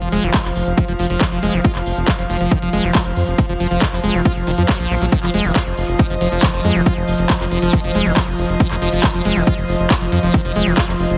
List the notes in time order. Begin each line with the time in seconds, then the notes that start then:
Already playing: F3 F4 C5 F5
0.01 F1 F3, closed hi-hat
0.12 F1 G#3, open hi-hat
0.23 F1 D#3, closed hi-hat
0.34 F4, kick, clap, closed hi-hat
0.45 F1, clap, closed hi-hat
0.56 F1, open hi-hat
0.67 F1, closed hi-hat
0.78 F3, kick, closed hi-hat
0.88 F1 F3, closed hi-hat
0.99 F1 F3, open hi-hat
1.10 F1 F3, closed hi-hat
1.21 D#3, kick, clap, closed hi-hat
1.32 F1 F3, closed hi-hat
1.43 F1 G#3, open hi-hat
1.54 F1 D#3, closed hi-hat
1.64 F4, kick, closed hi-hat
1.75 F1, clap, closed hi-hat
1.86 F1, open hi-hat
1.97 F1, closed hi-hat
2.08 F3, kick, clap, closed hi-hat
2.19 F1 F3, closed hi-hat
2.30 F1 F3, open hi-hat
2.41 F1 F3, closed hi-hat
2.51 D#3, kick, closed hi-hat
2.62 F1 F3, closed hi-hat
2.73 F1 G#3, open hi-hat
2.84 F1 D#3, closed hi-hat
2.95 F4, kick, clap, closed hi-hat
3.06 F1, closed hi-hat
3.17 F2, open hi-hat
3.28 F1, closed hi-hat
3.38 F3, kick, closed hi-hat
3.49 F1 F3, closed hi-hat
3.60 F1 F3, open hi-hat
3.71 F1 F3, closed hi-hat
3.82 D#3, kick, clap, closed hi-hat
3.93 F1 F3, clap, closed hi-hat
4.04 F1 G#3, open hi-hat
4.14 F1 D#3, closed hi-hat
4.25 F4, kick, closed hi-hat
4.36 F1, closed hi-hat
4.47 F1 D#3, open hi-hat
4.58 F2 F3, closed hi-hat
4.69 F#3, kick, clap, closed hi-hat
4.80 A#1 F3, closed hi-hat
4.91 A#1 F#3, open hi-hat
5.01 A#1 F#3, closed hi-hat
5.12 D#3, kick, closed hi-hat
5.23 F1 F3, clap, closed hi-hat
5.34 F1 G#3, open hi-hat
5.45 F1 D#3 D#5, closed hi-hat
5.56 F4, kick, clap, closed hi-hat
5.67 F1, closed hi-hat
5.78 F1, open hi-hat
5.88 F1, closed hi-hat
5.99 F3, kick, closed hi-hat
6.10 F1 F3, closed hi-hat
6.21 F1 F3, open hi-hat
6.32 F1 F3, closed hi-hat
6.43 D#3, kick, clap, closed hi-hat
6.54 F1 F3, closed hi-hat
6.64 F2 G#3, open hi-hat
6.75 F1 D#3, closed hi-hat
6.86 F4, kick, closed hi-hat
6.97 F1, closed hi-hat
7.08 F1, open hi-hat
7.19 F1, closed hi-hat
7.30 F3, kick, clap, closed hi-hat
7.41 F1 F3, clap, closed hi-hat
7.51 F1 F3, open hi-hat
7.62 F1 F3, closed hi-hat
7.73 D#3, kick, closed hi-hat
7.84 F1 F3, closed hi-hat
7.95 F1 G#3, open hi-hat
8.06 F1 D#3, closed hi-hat
8.17 F4, kick, clap, closed hi-hat
8.28 F1, closed hi-hat
8.38 F1, open hi-hat
8.49 F1, closed hi-hat
8.60 F3, kick, closed hi-hat
8.71 F1 F3, clap, closed hi-hat
8.82 F1 F3, open hi-hat
8.93 F1 F3, closed hi-hat
9.04 D#3, kick, clap, closed hi-hat
9.14 F1 F3, closed hi-hat
9.25 F1 G#3, open hi-hat
9.36 F1 D#3, closed hi-hat
9.47 F4, kick, closed hi-hat
9.58 F1, closed hi-hat
9.69 F1, open hi-hat
9.80 F1, closed hi-hat
9.91 F3, kick, clap, closed hi-hat
10.01 F1 F3, closed hi-hat
10.12 F2 F3, open hi-hat
10.23 F1 F3, closed hi-hat
10.34 D#3, kick, closed hi-hat
10.45 F1 F3, closed hi-hat
10.56 F1 G#3, open hi-hat
10.67 F1 D#3, closed hi-hat
10.78 F4, kick, clap, closed hi-hat
10.88 F1, clap, closed hi-hat
10.99 F1, open hi-hat
11.10 F1, closed hi-hat